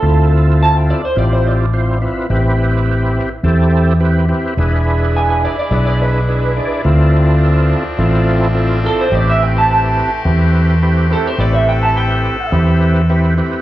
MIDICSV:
0, 0, Header, 1, 5, 480
1, 0, Start_track
1, 0, Key_signature, 0, "minor"
1, 0, Tempo, 567644
1, 29, Time_signature, 4, 2, 24, 8
1, 11515, End_track
2, 0, Start_track
2, 0, Title_t, "Clean electric guitar"
2, 0, Program_c, 0, 27
2, 0, Note_on_c, 0, 69, 88
2, 264, Note_off_c, 0, 69, 0
2, 529, Note_on_c, 0, 81, 89
2, 651, Note_off_c, 0, 81, 0
2, 651, Note_on_c, 0, 79, 91
2, 755, Note_off_c, 0, 79, 0
2, 763, Note_on_c, 0, 74, 87
2, 877, Note_off_c, 0, 74, 0
2, 888, Note_on_c, 0, 72, 87
2, 994, Note_off_c, 0, 72, 0
2, 1002, Note_on_c, 0, 74, 92
2, 1122, Note_off_c, 0, 74, 0
2, 1122, Note_on_c, 0, 72, 85
2, 1240, Note_off_c, 0, 72, 0
2, 1240, Note_on_c, 0, 74, 97
2, 2643, Note_off_c, 0, 74, 0
2, 4367, Note_on_c, 0, 80, 97
2, 4474, Note_off_c, 0, 80, 0
2, 4485, Note_on_c, 0, 80, 80
2, 4594, Note_off_c, 0, 80, 0
2, 4606, Note_on_c, 0, 74, 94
2, 4720, Note_off_c, 0, 74, 0
2, 4731, Note_on_c, 0, 74, 86
2, 4829, Note_off_c, 0, 74, 0
2, 4839, Note_on_c, 0, 74, 94
2, 4952, Note_off_c, 0, 74, 0
2, 4962, Note_on_c, 0, 74, 92
2, 5088, Note_off_c, 0, 74, 0
2, 5088, Note_on_c, 0, 71, 93
2, 6488, Note_off_c, 0, 71, 0
2, 7494, Note_on_c, 0, 69, 99
2, 7604, Note_off_c, 0, 69, 0
2, 7618, Note_on_c, 0, 72, 91
2, 7734, Note_off_c, 0, 72, 0
2, 7734, Note_on_c, 0, 74, 87
2, 7845, Note_off_c, 0, 74, 0
2, 7860, Note_on_c, 0, 76, 89
2, 7971, Note_off_c, 0, 76, 0
2, 7971, Note_on_c, 0, 79, 92
2, 8083, Note_off_c, 0, 79, 0
2, 8102, Note_on_c, 0, 81, 90
2, 8200, Note_off_c, 0, 81, 0
2, 8210, Note_on_c, 0, 81, 99
2, 8668, Note_off_c, 0, 81, 0
2, 9409, Note_on_c, 0, 69, 92
2, 9533, Note_off_c, 0, 69, 0
2, 9533, Note_on_c, 0, 72, 95
2, 9638, Note_off_c, 0, 72, 0
2, 9643, Note_on_c, 0, 74, 98
2, 9759, Note_off_c, 0, 74, 0
2, 9763, Note_on_c, 0, 76, 90
2, 9873, Note_off_c, 0, 76, 0
2, 9883, Note_on_c, 0, 79, 89
2, 9998, Note_off_c, 0, 79, 0
2, 10001, Note_on_c, 0, 81, 93
2, 10112, Note_off_c, 0, 81, 0
2, 10123, Note_on_c, 0, 79, 107
2, 10584, Note_off_c, 0, 79, 0
2, 11515, End_track
3, 0, Start_track
3, 0, Title_t, "Tonewheel organ"
3, 0, Program_c, 1, 16
3, 19, Note_on_c, 1, 60, 75
3, 22, Note_on_c, 1, 64, 72
3, 22, Note_on_c, 1, 65, 67
3, 25, Note_on_c, 1, 69, 92
3, 858, Note_off_c, 1, 60, 0
3, 859, Note_off_c, 1, 64, 0
3, 859, Note_off_c, 1, 65, 0
3, 861, Note_off_c, 1, 69, 0
3, 977, Note_on_c, 1, 64, 81
3, 981, Note_on_c, 1, 60, 92
3, 983, Note_on_c, 1, 65, 77
3, 983, Note_on_c, 1, 67, 92
3, 1401, Note_off_c, 1, 64, 0
3, 1403, Note_off_c, 1, 60, 0
3, 1404, Note_off_c, 1, 65, 0
3, 1404, Note_off_c, 1, 67, 0
3, 1466, Note_on_c, 1, 64, 62
3, 1467, Note_on_c, 1, 60, 70
3, 1467, Note_on_c, 1, 72, 82
3, 1468, Note_on_c, 1, 65, 70
3, 1677, Note_off_c, 1, 60, 0
3, 1677, Note_off_c, 1, 64, 0
3, 1678, Note_off_c, 1, 65, 0
3, 1678, Note_off_c, 1, 72, 0
3, 1702, Note_on_c, 1, 60, 68
3, 1705, Note_on_c, 1, 64, 59
3, 1707, Note_on_c, 1, 65, 63
3, 1707, Note_on_c, 1, 71, 69
3, 1915, Note_off_c, 1, 60, 0
3, 1917, Note_off_c, 1, 64, 0
3, 1918, Note_off_c, 1, 65, 0
3, 1918, Note_off_c, 1, 71, 0
3, 1946, Note_on_c, 1, 60, 94
3, 1946, Note_on_c, 1, 64, 86
3, 1948, Note_on_c, 1, 71, 97
3, 1950, Note_on_c, 1, 67, 79
3, 2783, Note_off_c, 1, 60, 0
3, 2783, Note_off_c, 1, 64, 0
3, 2784, Note_off_c, 1, 71, 0
3, 2785, Note_off_c, 1, 67, 0
3, 2908, Note_on_c, 1, 64, 91
3, 2909, Note_on_c, 1, 60, 97
3, 2909, Note_on_c, 1, 67, 92
3, 2911, Note_on_c, 1, 69, 108
3, 3328, Note_off_c, 1, 60, 0
3, 3328, Note_off_c, 1, 64, 0
3, 3328, Note_off_c, 1, 67, 0
3, 3329, Note_off_c, 1, 69, 0
3, 3385, Note_on_c, 1, 60, 86
3, 3385, Note_on_c, 1, 64, 71
3, 3386, Note_on_c, 1, 67, 79
3, 3388, Note_on_c, 1, 71, 95
3, 3598, Note_off_c, 1, 60, 0
3, 3598, Note_off_c, 1, 64, 0
3, 3598, Note_off_c, 1, 67, 0
3, 3599, Note_off_c, 1, 71, 0
3, 3622, Note_on_c, 1, 60, 83
3, 3624, Note_on_c, 1, 64, 74
3, 3627, Note_on_c, 1, 67, 77
3, 3629, Note_on_c, 1, 71, 88
3, 3837, Note_off_c, 1, 60, 0
3, 3837, Note_off_c, 1, 64, 0
3, 3839, Note_off_c, 1, 67, 0
3, 3840, Note_off_c, 1, 71, 0
3, 3872, Note_on_c, 1, 62, 88
3, 3873, Note_on_c, 1, 64, 84
3, 3875, Note_on_c, 1, 68, 79
3, 3877, Note_on_c, 1, 71, 98
3, 4707, Note_off_c, 1, 62, 0
3, 4707, Note_off_c, 1, 64, 0
3, 4708, Note_off_c, 1, 68, 0
3, 4709, Note_off_c, 1, 71, 0
3, 4829, Note_on_c, 1, 62, 88
3, 4830, Note_on_c, 1, 64, 80
3, 4831, Note_on_c, 1, 68, 84
3, 4833, Note_on_c, 1, 71, 87
3, 5249, Note_off_c, 1, 62, 0
3, 5249, Note_off_c, 1, 64, 0
3, 5250, Note_off_c, 1, 68, 0
3, 5251, Note_off_c, 1, 71, 0
3, 5313, Note_on_c, 1, 71, 79
3, 5314, Note_on_c, 1, 62, 68
3, 5314, Note_on_c, 1, 64, 64
3, 5314, Note_on_c, 1, 68, 60
3, 5522, Note_off_c, 1, 71, 0
3, 5523, Note_off_c, 1, 62, 0
3, 5523, Note_off_c, 1, 64, 0
3, 5523, Note_off_c, 1, 68, 0
3, 5551, Note_on_c, 1, 62, 69
3, 5551, Note_on_c, 1, 68, 66
3, 5553, Note_on_c, 1, 64, 66
3, 5556, Note_on_c, 1, 74, 75
3, 5761, Note_off_c, 1, 62, 0
3, 5761, Note_off_c, 1, 68, 0
3, 5763, Note_off_c, 1, 64, 0
3, 5764, Note_off_c, 1, 74, 0
3, 5786, Note_on_c, 1, 60, 92
3, 5788, Note_on_c, 1, 64, 85
3, 5789, Note_on_c, 1, 65, 86
3, 5789, Note_on_c, 1, 69, 101
3, 6624, Note_off_c, 1, 60, 0
3, 6624, Note_off_c, 1, 64, 0
3, 6625, Note_off_c, 1, 65, 0
3, 6625, Note_off_c, 1, 69, 0
3, 6749, Note_on_c, 1, 60, 109
3, 6750, Note_on_c, 1, 65, 95
3, 6753, Note_on_c, 1, 69, 116
3, 6754, Note_on_c, 1, 64, 94
3, 7169, Note_off_c, 1, 60, 0
3, 7169, Note_off_c, 1, 65, 0
3, 7171, Note_off_c, 1, 64, 0
3, 7171, Note_off_c, 1, 69, 0
3, 7226, Note_on_c, 1, 65, 79
3, 7227, Note_on_c, 1, 60, 92
3, 7227, Note_on_c, 1, 64, 77
3, 7229, Note_on_c, 1, 69, 95
3, 7439, Note_off_c, 1, 60, 0
3, 7439, Note_off_c, 1, 64, 0
3, 7439, Note_off_c, 1, 65, 0
3, 7440, Note_off_c, 1, 69, 0
3, 7467, Note_on_c, 1, 60, 72
3, 7471, Note_on_c, 1, 64, 69
3, 7472, Note_on_c, 1, 65, 68
3, 7474, Note_on_c, 1, 69, 78
3, 7679, Note_off_c, 1, 60, 0
3, 7681, Note_off_c, 1, 64, 0
3, 7682, Note_off_c, 1, 65, 0
3, 7683, Note_off_c, 1, 69, 0
3, 7704, Note_on_c, 1, 60, 83
3, 7705, Note_on_c, 1, 67, 74
3, 7708, Note_on_c, 1, 64, 72
3, 7709, Note_on_c, 1, 71, 92
3, 8542, Note_off_c, 1, 60, 0
3, 8543, Note_off_c, 1, 67, 0
3, 8544, Note_off_c, 1, 64, 0
3, 8544, Note_off_c, 1, 71, 0
3, 8669, Note_on_c, 1, 60, 93
3, 8669, Note_on_c, 1, 64, 80
3, 8670, Note_on_c, 1, 67, 82
3, 8672, Note_on_c, 1, 71, 99
3, 9088, Note_off_c, 1, 60, 0
3, 9088, Note_off_c, 1, 64, 0
3, 9089, Note_off_c, 1, 67, 0
3, 9090, Note_off_c, 1, 71, 0
3, 9153, Note_on_c, 1, 60, 91
3, 9155, Note_on_c, 1, 64, 72
3, 9155, Note_on_c, 1, 71, 94
3, 9156, Note_on_c, 1, 67, 80
3, 9362, Note_off_c, 1, 60, 0
3, 9363, Note_off_c, 1, 64, 0
3, 9363, Note_off_c, 1, 71, 0
3, 9364, Note_off_c, 1, 67, 0
3, 9387, Note_on_c, 1, 60, 70
3, 9389, Note_on_c, 1, 64, 64
3, 9389, Note_on_c, 1, 67, 66
3, 9389, Note_on_c, 1, 71, 83
3, 9599, Note_off_c, 1, 60, 0
3, 9600, Note_off_c, 1, 64, 0
3, 9600, Note_off_c, 1, 67, 0
3, 9600, Note_off_c, 1, 71, 0
3, 9625, Note_on_c, 1, 60, 76
3, 9628, Note_on_c, 1, 67, 72
3, 9628, Note_on_c, 1, 71, 85
3, 9629, Note_on_c, 1, 64, 74
3, 10462, Note_off_c, 1, 60, 0
3, 10463, Note_off_c, 1, 64, 0
3, 10463, Note_off_c, 1, 67, 0
3, 10463, Note_off_c, 1, 71, 0
3, 10586, Note_on_c, 1, 60, 90
3, 10587, Note_on_c, 1, 64, 82
3, 10587, Note_on_c, 1, 67, 83
3, 10591, Note_on_c, 1, 71, 107
3, 11006, Note_off_c, 1, 60, 0
3, 11006, Note_off_c, 1, 64, 0
3, 11007, Note_off_c, 1, 67, 0
3, 11008, Note_off_c, 1, 71, 0
3, 11072, Note_on_c, 1, 60, 87
3, 11074, Note_on_c, 1, 64, 83
3, 11076, Note_on_c, 1, 71, 91
3, 11077, Note_on_c, 1, 67, 73
3, 11281, Note_off_c, 1, 60, 0
3, 11281, Note_off_c, 1, 64, 0
3, 11282, Note_off_c, 1, 71, 0
3, 11283, Note_off_c, 1, 67, 0
3, 11308, Note_on_c, 1, 64, 81
3, 11309, Note_on_c, 1, 60, 85
3, 11310, Note_on_c, 1, 71, 90
3, 11313, Note_on_c, 1, 67, 86
3, 11515, Note_off_c, 1, 60, 0
3, 11515, Note_off_c, 1, 64, 0
3, 11515, Note_off_c, 1, 67, 0
3, 11515, Note_off_c, 1, 71, 0
3, 11515, End_track
4, 0, Start_track
4, 0, Title_t, "Horn section"
4, 0, Program_c, 2, 61
4, 3876, Note_on_c, 2, 62, 74
4, 3877, Note_on_c, 2, 56, 76
4, 3877, Note_on_c, 2, 64, 85
4, 5777, Note_off_c, 2, 56, 0
4, 5778, Note_off_c, 2, 64, 0
4, 5799, Note_on_c, 2, 53, 93
4, 5800, Note_on_c, 2, 60, 82
4, 7682, Note_off_c, 2, 62, 0
4, 7698, Note_off_c, 2, 53, 0
4, 7712, Note_on_c, 2, 67, 90
4, 7715, Note_on_c, 2, 57, 82
4, 9613, Note_off_c, 2, 67, 0
4, 9632, Note_on_c, 2, 69, 97
4, 11515, Note_off_c, 2, 57, 0
4, 11515, Note_off_c, 2, 60, 0
4, 11515, Note_off_c, 2, 69, 0
4, 11515, End_track
5, 0, Start_track
5, 0, Title_t, "Fingered electric bass"
5, 0, Program_c, 3, 33
5, 23, Note_on_c, 3, 38, 102
5, 772, Note_off_c, 3, 38, 0
5, 988, Note_on_c, 3, 33, 99
5, 1736, Note_off_c, 3, 33, 0
5, 1944, Note_on_c, 3, 33, 98
5, 2694, Note_off_c, 3, 33, 0
5, 2905, Note_on_c, 3, 40, 104
5, 3655, Note_off_c, 3, 40, 0
5, 3865, Note_on_c, 3, 28, 94
5, 4616, Note_off_c, 3, 28, 0
5, 4828, Note_on_c, 3, 35, 103
5, 5577, Note_off_c, 3, 35, 0
5, 5792, Note_on_c, 3, 38, 93
5, 6540, Note_off_c, 3, 38, 0
5, 6753, Note_on_c, 3, 33, 105
5, 7500, Note_off_c, 3, 33, 0
5, 7709, Note_on_c, 3, 33, 101
5, 8457, Note_off_c, 3, 33, 0
5, 8669, Note_on_c, 3, 40, 103
5, 9417, Note_off_c, 3, 40, 0
5, 9626, Note_on_c, 3, 33, 97
5, 10375, Note_off_c, 3, 33, 0
5, 10589, Note_on_c, 3, 40, 110
5, 11336, Note_off_c, 3, 40, 0
5, 11515, End_track
0, 0, End_of_file